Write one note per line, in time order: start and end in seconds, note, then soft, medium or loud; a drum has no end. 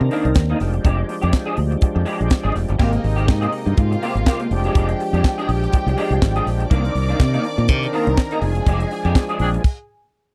0.00 0.08 C3 medium
0.00 0.59 D#3 medium
0.00 0.59 C4 medium
0.00 2.77 D4 medium
0.00 0.59 A#4 medium
0.00 muted clean electric guitar stroke soft
0.11 0.32 D#3 medium
0.11 0.25 A#3 medium
0.11 0.24 D4 medium
0.11 open hi-hat medium
0.25 0.33 C2 medium
0.25 muted clean electric guitar stroke soft
0.25 closed hi-hat soft
0.35 0.53 D#2 medium
0.35 muted clean electric guitar stroke soft
0.35 kick loud
0.35 snare loud
0.35 clap medium
0.35 closed hi-hat medium
0.50 0.70 D#3 medium
0.50 0.60 A#3 medium
0.50 0.60 D#4 medium
0.60 0.78 F1 medium
0.60 2.78 F3 medium
0.60 2.77 G#3 medium
0.60 2.78 G4 medium
0.60 muted clean electric guitar stroke soft
0.60 snare soft
0.60 open hi-hat medium
0.73 muted clean electric guitar stroke soft
0.73 closed hi-hat soft
0.84 1.02 F1 medium
0.84 1.04 G#3 medium
0.84 0.98 D4 medium
0.84 0.97 G4 medium
0.84 kick loud
0.84 closed hi-hat medium
0.98 muted clean electric guitar stroke soft
1.08 muted clean electric guitar stroke soft
1.08 open hi-hat medium
1.21 1.31 F2 medium
1.21 1.32 G#3 soft
1.21 1.32 D4 medium
1.21 1.32 G4 medium
1.21 closed hi-hat medium
1.33 muted clean electric guitar stroke soft
1.33 kick loud
1.33 snare medium
1.33 clap medium
1.33 closed hi-hat medium
1.46 1.57 G#3 medium
1.46 1.57 D4 medium
1.46 1.59 G#4 medium
1.57 1.75 D2 medium
1.57 muted clean electric guitar stroke soft
1.57 open hi-hat medium
1.71 muted clean electric guitar stroke soft
1.71 closed hi-hat soft
1.81 muted clean electric guitar stroke soft
1.81 muted fingered electric bass stroke soft
1.81 kick loud
1.81 closed hi-hat medium
1.95 2.03 F2 medium
1.95 muted clean electric guitar stroke soft
2.05 2.26 G#3 medium
2.05 2.19 D4 medium
2.05 2.18 G4 medium
2.05 open hi-hat medium
2.19 2.28 A#1 medium
2.19 muted clean electric guitar stroke soft
2.19 closed hi-hat soft
2.30 muted clean electric guitar stroke soft
2.30 kick loud
2.30 snare loud
2.30 clap medium
2.30 closed hi-hat medium
2.43 2.52 G#1 medium
2.43 2.54 G#3 medium
2.43 2.54 D4 medium
2.43 2.55 G#4 medium
2.55 2.65 F1 medium
2.55 muted clean electric guitar stroke soft
2.55 snare soft
2.55 open hi-hat medium
2.68 2.77 G1 medium
2.68 muted clean electric guitar stroke soft
2.68 closed hi-hat soft
2.78 2.97 G#1 loud
2.78 4.48 C3 medium
2.78 6.66 G#3 medium
2.78 4.48 A#3 medium
2.78 2.99 A#3 medium
2.78 2.92 C4 medium
2.78 3.75 D#4 medium
2.78 4.49 G4 medium
2.78 2.91 G4 medium
2.78 3.75 D#5 medium
2.78 kick loud
2.78 crash medium
2.92 muted clean electric guitar stroke medium
2.92 closed hi-hat soft
3.04 3.30 G#1 medium
3.04 muted clean electric guitar stroke soft
3.04 open hi-hat medium
3.16 3.26 A#3 soft
3.16 3.27 C4 medium
3.16 3.27 G4 medium
3.16 closed hi-hat soft
3.27 3.46 G#2 loud
3.27 muted clean electric guitar stroke soft
3.27 kick loud
3.27 snare loud
3.27 clap medium
3.41 3.50 A#3 medium
3.41 3.51 C4 medium
3.41 3.53 G#4 medium
3.41 closed hi-hat soft
3.52 muted clean electric guitar stroke soft
3.52 open hi-hat medium
3.65 3.74 G2 medium
3.65 muted clean electric guitar stroke soft
3.65 closed hi-hat soft
3.77 3.95 G#2 medium
3.77 4.49 F4 medium
3.77 4.49 F5 medium
3.77 muted clean electric guitar stroke soft
3.77 kick loud
3.77 closed hi-hat medium
3.91 muted clean electric guitar stroke medium
3.91 closed hi-hat soft
4.02 4.22 A#3 medium
4.02 4.16 C4 medium
4.02 4.14 G4 medium
4.02 open hi-hat medium
4.15 4.23 G#1 medium
4.15 muted clean electric guitar stroke soft
4.15 closed hi-hat soft
4.26 4.47 A#3 medium
4.26 4.41 C4 medium
4.26 4.39 G4 medium
4.26 kick loud
4.26 snare loud
4.26 clap medium
4.39 muted clean electric guitar stroke soft
4.39 closed hi-hat soft
4.51 4.68 F1 medium
4.51 6.69 F3 medium
4.51 6.69 D4 medium
4.51 6.67 G4 medium
4.51 6.69 G4 medium
4.51 6.67 G5 medium
4.51 muted clean electric guitar stroke soft
4.51 open hi-hat medium
4.64 4.74 G#3 medium
4.64 4.75 D4 soft
4.64 4.75 G4 medium
4.64 closed hi-hat soft
4.75 4.92 F1 medium
4.75 4.95 G#3 medium
4.75 4.89 D4 medium
4.75 4.88 G4 medium
4.75 kick loud
4.75 closed hi-hat medium
4.89 muted clean electric guitar stroke medium
4.89 closed hi-hat soft
5.00 muted clean electric guitar stroke soft
5.00 open hi-hat medium
5.13 5.21 F2 medium
5.13 5.23 G#3 soft
5.13 5.24 D4 medium
5.13 5.24 G4 medium
5.13 closed hi-hat medium
5.24 muted clean electric guitar stroke soft
5.24 kick loud
5.24 snare loud
5.24 clap medium
5.38 5.47 G#3 medium
5.38 5.48 D4 medium
5.38 5.50 G#4 medium
5.38 closed hi-hat soft
5.49 5.66 A#1 medium
5.49 muted clean electric guitar stroke soft
5.49 open hi-hat medium
5.63 muted clean electric guitar stroke soft
5.63 closed hi-hat soft
5.72 muted clean electric guitar stroke soft
5.72 kick loud
5.72 closed hi-hat medium
5.86 5.94 C2 medium
5.86 muted clean electric guitar stroke soft
5.86 closed hi-hat soft
5.97 6.17 G#3 medium
5.97 6.12 D4 medium
5.97 6.11 G4 loud
5.97 open hi-hat medium
6.10 6.18 C2 medium
6.10 muted clean electric guitar stroke medium
6.10 closed hi-hat medium
6.22 6.39 G#1 medium
6.22 muted clean electric guitar stroke medium
6.22 kick loud
6.22 snare loud
6.22 clap medium
6.36 6.46 G#3 medium
6.36 6.47 D4 medium
6.36 6.48 G#4 medium
6.36 closed hi-hat soft
6.46 6.64 A#1 medium
6.46 muted clean electric guitar stroke soft
6.46 snare soft
6.46 open hi-hat medium
6.60 muted clean electric guitar stroke soft
6.60 closed hi-hat soft
6.70 6.88 C2 loud
6.70 6.91 D#3 medium
6.70 8.41 D#3 medium
6.70 6.84 A#3 loud
6.70 8.41 C4 medium
6.70 9.62 D4 medium
6.70 6.83 D4 loud
6.70 8.41 A#4 medium
6.70 7.91 D5 medium
6.70 7.91 D6 loud
6.70 kick loud
6.70 closed hi-hat medium
6.84 muted clean electric guitar stroke soft
6.84 closed hi-hat soft
6.95 7.12 C2 medium
6.95 muted clean electric guitar stroke soft
6.95 open hi-hat medium
7.08 7.19 D#3 soft
7.08 7.20 A#3 soft
7.08 7.20 D4 medium
7.08 closed hi-hat soft
7.20 7.37 C3 loud
7.20 muted clean electric guitar stroke soft
7.20 kick loud
7.20 snare loud
7.20 clap medium
7.33 7.43 D#3 medium
7.33 7.43 A#3 medium
7.33 7.45 D#4 medium
7.33 closed hi-hat soft
7.44 muted clean electric guitar stroke soft
7.44 open hi-hat medium
7.57 7.69 A#2 loud
7.57 muted clean electric guitar stroke soft
7.57 closed hi-hat soft
7.68 7.86 C3 loud
7.68 muted clean electric guitar stroke soft
7.68 kick loud
7.68 closed hi-hat medium
7.83 muted clean electric guitar stroke soft
7.83 closed hi-hat soft
7.93 8.13 D#3 medium
7.93 8.07 A#3 loud
7.93 8.06 D4 loud
7.93 8.41 A#4 medium
7.93 8.41 A#5 medium
7.93 open hi-hat medium
8.07 8.14 C2 medium
8.07 muted clean electric guitar stroke soft
8.07 closed hi-hat medium
8.17 muted clean electric guitar stroke soft
8.17 kick loud
8.17 snare loud
8.17 clap medium
8.31 8.51 D#3 medium
8.31 8.43 A#3 medium
8.31 8.43 D#4 medium
8.31 closed hi-hat soft
8.41 8.59 F1 medium
8.41 9.63 F3 medium
8.41 9.63 G#3 medium
8.41 9.62 G#4 medium
8.41 9.63 G#4 medium
8.41 9.62 G#5 loud
8.41 muted clean electric guitar stroke soft
8.41 open hi-hat medium
8.55 muted clean electric guitar stroke soft
8.55 closed hi-hat medium
8.66 8.84 F1 loud
8.66 8.87 G#3 medium
8.66 8.81 D4 medium
8.66 8.79 G4 medium
8.66 kick loud
8.66 closed hi-hat medium
8.80 muted clean electric guitar stroke soft
8.80 closed hi-hat soft
8.91 muted clean electric guitar stroke soft
8.91 open hi-hat medium
9.05 9.12 F2 loud
9.05 9.14 G#3 soft
9.05 9.15 D4 medium
9.05 9.15 G4 medium
9.05 closed hi-hat medium
9.15 muted clean electric guitar stroke soft
9.15 kick loud
9.15 snare loud
9.15 clap medium
9.29 9.38 G#3 medium
9.29 9.39 D4 medium
9.29 9.40 G#4 medium
9.29 closed hi-hat soft
9.39 9.57 A#1 medium
9.39 9.49 C4 medium
9.39 9.49 D4 medium
9.39 9.49 G#4 medium
9.39 muted clean electric guitar stroke soft
9.39 open hi-hat medium
9.54 muted clean electric guitar stroke soft
9.54 closed hi-hat soft
9.64 kick loud
9.64 crash medium